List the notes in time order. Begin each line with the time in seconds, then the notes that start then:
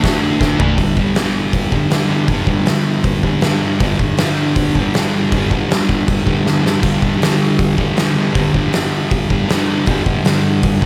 0.04 D3 A3 D4, kick, snare, open hi-hat
0.22 D3 A3 D4
0.40 D3 A3 D4, kick, snare
0.59 D3 A3 D4, floor tom
0.78 G2 D3 G3, kick, open hi-hat
0.97 G3, kick
1.01 D3
1.15 G2 D3, snare, open hi-hat
1.21 G3
1.53 kick, open hi-hat
1.72 D3 G3, kick
1.90 G2 D3, snare, open hi-hat
1.95 G3
2.08 G3
2.12 D3
2.28 G2 D3, kick, open hi-hat
2.32 G3
2.47 G3, kick
2.52 D3
2.66 G2, snare, open hi-hat
2.70 D3 G3
3.04 kick, open hi-hat
3.23 D3 G3, kick
3.41 G2 D3, snare, open hi-hat
3.45 G3
3.61 D3 G3
3.79 G2 D3 G3, kick, open hi-hat
3.99 G3, kick
4.03 D3
4.17 G2, snare, open hi-hat
4.22 D3 G3
4.56 kick, open hi-hat
4.75 G3, kick
4.80 D3
4.94 G2, snare, open hi-hat
4.98 D3 G3
5.14 G3
5.19 D3
5.32 G2 D3, kick, open hi-hat
5.38 G3
5.51 G3, kick
5.55 D3
5.70 G2 D3, snare, open hi-hat
5.74 G3
5.89 kick
6.08 kick, open hi-hat
6.26 D3 G3, kick
6.44 G2 D3 G3, snare
6.63 D3 G3, snare
6.80 G2 D3 G3, kick, open hi-hat, splash
6.99 D3 G3, kick
7.18 G2 D3, open hi-hat
7.23 G3, snare
7.59 kick, open hi-hat
7.77 D3 G3, kick
7.96 G2 D3 G3, snare, open hi-hat
8.15 G3
8.19 D3
8.32 G2 D3 G3, kick, open hi-hat
8.54 D3 G3, kick
8.72 G2 D3 G3, snare, open hi-hat
9.11 kick, open hi-hat
9.29 D3 G3, kick
9.49 G2 D3, snare, open hi-hat
9.53 G3
9.67 G3
9.71 D3
9.86 G2 D3 G3, kick, open hi-hat
10.04 D3 G3, kick
10.24 G2 D3 G3, snare, open hi-hat
10.63 kick, open hi-hat
10.81 G3, kick